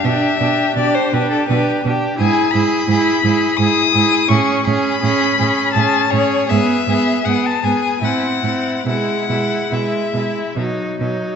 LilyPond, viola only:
\new Staff \with { instrumentName = "Viola" } { \time 3/4 \key g \mixolydian \tempo 4 = 82 d'8 d'8 d'8 d'8 d'8 d'8 | \key e \major e'8 e'8 e'8 e'8 e'8 e'8 | cis'8 cis'8 cis'8 cis'8 cis'8 cis'8 | b8 b8 b8 b8 c'8 c'8 |
gis8 gis8 gis8 gis8 fis8 fis8 | }